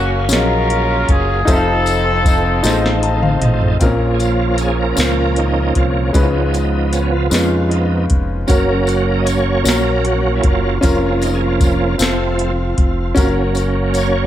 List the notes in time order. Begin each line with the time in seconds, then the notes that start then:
Already playing: F#1 F#3 A#3 C#4 F#4 G#4 A#4 F5
0.29 A#1 F#3 C#4 F4 G#4 A#4 D#5, closed hi-hat, tambourine
0.33 A#4, snare
0.38 F5
0.70 closed hi-hat
1.09 F#1 G#4, kick, closed hi-hat
1.45 F1 F3 C4 D#4 F4 A4 C5 E5, kick, closed hi-hat, tambourine
1.51 C4 D#4 A4
1.55 F5
1.86 closed hi-hat, tambourine
2.26 kick, closed hi-hat, tambourine
2.63 A1 D#4 F4 G#4 C5 D#5, closed hi-hat, tambourine
2.67 snare
2.71 A4
2.86 snare
3.03 A5, closed hi-hat
3.22 F5, mid tom
3.41 A1 D#5, closed hi-hat, mid tom
3.62 floor tom
3.79 A#1 A#2 F3 A#3 C4 F4 A#4, kick, closed hi-hat, tambourine
3.84 C#4
4.14 G#4
4.20 F4, closed hi-hat, tambourine
4.55 A#4, closed hi-hat, tambourine
4.61 G#4
4.81 A#4
4.96 C#2 C#4 F4 A#4 C5, snare, closed hi-hat, tambourine
5.36 D#4, closed hi-hat
5.75 C2 F3 A#3 C#4 F4, kick, closed hi-hat
5.96 C#4
6.13 C#2 C#3 F3 G#3 B3 C#4 D#4 E4 B4, kick, closed hi-hat, tambourine
6.22 F4
6.54 D#4, closed hi-hat, tambourine
6.93 C#4, closed hi-hat, tambourine
7.12 F4
7.30 F2 G#3 B3 C#4 D#4 B4, closed hi-hat, tambourine
7.34 snare
7.39 F4
7.69 F3 B3 D#4, closed hi-hat
8.10 F1, kick, closed hi-hat
8.47 F#1 F#3 A#3 C#4 F#4 A#4, kick, closed hi-hat, tambourine
8.87 F#4, closed hi-hat, tambourine
9.08 A#4
9.19 D#5
9.26 C#5, closed hi-hat, tambourine
9.64 A#1 C#4 F#4 A#4, closed hi-hat, tambourine
9.69 snare
10.04 F#4, closed hi-hat
10.35 E4
10.43 F#1 F4, kick, closed hi-hat
10.81 F1 F3 A#3 C#4 F4 A#4, kick, closed hi-hat, tambourine
11.22 D#4, closed hi-hat, tambourine
11.35 G#4
11.43 F4
11.61 kick, closed hi-hat, tambourine
11.98 F1 F3 A3 C4 F4 A4, closed hi-hat, tambourine
12.02 snare
12.39 closed hi-hat
12.78 F1, kick, closed hi-hat
13.15 F#1 F#3 A#3 C#4 F#4 A#4, kick, closed hi-hat, tambourine
13.55 closed hi-hat, tambourine
13.94 C#5, closed hi-hat, tambourine